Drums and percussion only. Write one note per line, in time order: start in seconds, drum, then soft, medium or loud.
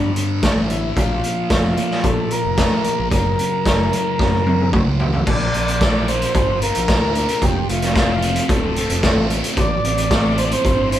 0.16 closed hi-hat medium
0.43 kick loud
0.43 snare loud
0.43 closed hi-hat medium
0.70 closed hi-hat medium
0.97 kick medium
0.97 closed hi-hat medium
1.24 closed hi-hat soft
1.50 kick loud
1.50 snare loud
1.50 closed hi-hat medium
1.77 closed hi-hat medium
1.91 snare soft
2.04 kick loud
2.04 closed hi-hat medium
2.31 closed hi-hat medium
2.57 kick loud
2.57 snare loud
2.57 closed hi-hat medium
2.84 closed hi-hat medium
3.11 kick medium
3.11 closed hi-hat medium
3.39 closed hi-hat medium
3.65 kick loud
3.65 snare loud
3.65 closed hi-hat medium
3.93 closed hi-hat medium
4.19 kick loud
4.19 snare medium
4.47 high tom medium
4.60 high tom soft
4.73 kick loud
4.73 mid tom medium
5.00 floor tom medium
5.13 floor tom medium
5.27 kick loud
5.27 crash loud
5.54 closed hi-hat medium
5.68 closed hi-hat medium
5.81 kick loud
5.81 snare loud
5.81 closed hi-hat medium
6.08 closed hi-hat medium
6.22 closed hi-hat medium
6.34 kick loud
6.34 closed hi-hat medium
6.62 closed hi-hat medium
6.75 closed hi-hat medium
6.88 kick loud
6.88 snare loud
6.88 closed hi-hat medium
7.15 closed hi-hat medium
7.29 closed hi-hat medium
7.42 kick loud
7.42 closed hi-hat medium
7.69 closed hi-hat medium
7.82 snare soft
7.82 closed hi-hat medium
7.96 kick loud
7.96 snare loud
7.96 closed hi-hat medium
8.22 closed hi-hat medium
8.36 closed hi-hat medium
8.49 kick loud
8.49 closed hi-hat medium
8.76 closed hi-hat medium
8.90 closed hi-hat medium
9.03 kick loud
9.03 snare loud
9.03 closed hi-hat medium
9.30 closed hi-hat medium
9.44 closed hi-hat medium
9.57 kick loud
9.57 closed hi-hat medium
9.85 closed hi-hat medium
9.98 closed hi-hat medium
10.11 kick loud
10.11 snare loud
10.11 closed hi-hat medium
10.38 closed hi-hat medium
10.51 closed hi-hat medium
10.65 kick loud
10.65 closed hi-hat medium
10.92 closed hi-hat medium